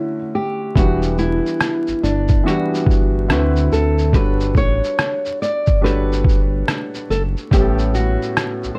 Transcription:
Already playing: D3 A3 C#4 E4 F#4
0.35 G4
0.75 E1 E3 G3 B3 D4 F#4, kick, closed hi-hat, shaker
1.02 shaker
1.18 E4, shaker
1.46 shaker
1.61 cross-stick, closed hi-hat, shaker
1.88 G1, shaker
2.03 G1 D4, shaker
2.28 kick, shaker
2.44 E3 B3 D4 F#4
2.48 G3, closed hi-hat, shaker
2.75 shaker
2.86 G1, kick
2.91 shaker
3.28 D2 D3 C4 E4 F#4, cross-stick, closed hi-hat, shaker
3.32 B4
3.56 shaker
3.72 D2 A4, shaker
3.99 shaker
4.13 G1 G3 D4 F#4 A4 B4, kick, closed hi-hat, shaker
4.18 C#5
4.40 shaker
4.55 A1 C#5, kick, shaker
4.84 shaker
4.99 cross-stick, closed hi-hat, shaker
5.25 shaker
5.42 D5, shaker
5.67 G1, kick, shaker
5.81 G3 D4 F#4 A4 B4
5.85 C#5, closed hi-hat, shaker
6.13 shaker
6.24 kick
6.29 shaker
6.68 cross-stick, closed hi-hat, shaker
6.95 shaker
7.10 F#1 A4, shaker
7.37 shaker
7.51 A1 A2 G3 B3 C#4 G4, kick, closed hi-hat, shaker
7.62 A4
7.79 shaker
7.95 F#4, shaker
8.22 shaker
8.37 cross-stick, closed hi-hat, shaker
8.64 B1, shaker
8.75 C5

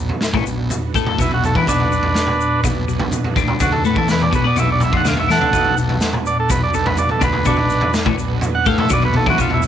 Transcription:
Already playing: F#3 B3 D4 F#4 B4
0.09 floor tom
0.21 snare, shaker
0.33 A1 A2, kick, mid tom
0.46 B1 B2, shaker
0.70 floor tom, shaker
0.94 A2 A3, kick, shaker
1.07 floor tom, mid tom
1.18 B1 B2 E4, kick, floor tom, shaker
1.31 F#4, floor tom
1.44 A4, floor tom, shaker
1.55 E2 E3 B4, kick, mid tom
1.67 B1 B2 D4 B4, kick, floor tom, shaker
1.80 floor tom
1.92 B1 B2, shaker
2.03 floor tom
2.15 snare, shaker
2.27 muted fingered electric bass stroke, muted clean electric guitar stroke, mid tom
2.41 shaker
2.64 B1 B2, kick, floor tom, shaker
2.88 B1 B2, shaker
2.99 floor tom, mid tom
3.12 floor tom, shaker
3.24 floor tom
3.36 D2 D3, kick, floor tom, shaker
3.48 mid tom
3.60 D2 D3 F#4, kick, floor tom, shaker
3.72 A4, floor tom
3.84 A2 A3 B4, shaker
3.95 E2 E3 A4, kick, floor tom
4.08 B4, snare, floor tom, shaker
4.21 D5, mid tom
4.31 B1 B2 B4, kick, shaker
4.44 B2 B3 D5
4.56 B1 B2 E5, floor tom, shaker
4.72 D5
4.80 mid tom, shaker
4.84 E5
4.93 F2 F3, kick, floor tom
4.97 F#5
5.05 D2 D3 F5, snare, floor tom, shaker
5.17 B1 B2 E5, floor tom
5.28 E2 E3 A4 F#5, snare, shaker
5.41 D2 D3, floor tom
5.53 B1 B2, kick, floor tom, shaker
5.65 floor tom
5.77 B1 B2, shaker
5.89 floor tom
6.01 snare, shaker
6.13 muted clean electric guitar stroke, muted fingered electric bass stroke, mid tom
6.26 D5, shaker
6.40 A4
6.50 B1 B2 B4, kick, floor tom, shaker
6.63 D5
6.74 B1 B2 A4, shaker
6.86 B4, floor tom, mid tom
6.97 D5, floor tom, shaker
7.09 A4, floor tom
7.21 D2 D3 B4, kick, floor tom, shaker
7.33 mid tom
7.45 B1 B2 D4 B4, kick, floor tom, shaker
7.57 B1 B2, floor tom
7.70 shaker
7.81 floor tom
7.94 snare, shaker
8.06 A1 A2, kick, mid tom
8.18 B1 B2, shaker
8.41 floor tom, shaker
8.55 F#5
8.65 A2 A3 F5, kick, shaker
8.78 E5, floor tom, mid tom
8.90 B1 B2 D5, kick, floor tom, shaker
9.02 B4, floor tom
9.14 A4, floor tom
9.26 E2 E3 F#4, kick, mid tom
9.38 B1 B2 F4, kick, floor tom, shaker
9.50 E4, floor tom
9.62 B1 B2, shaker

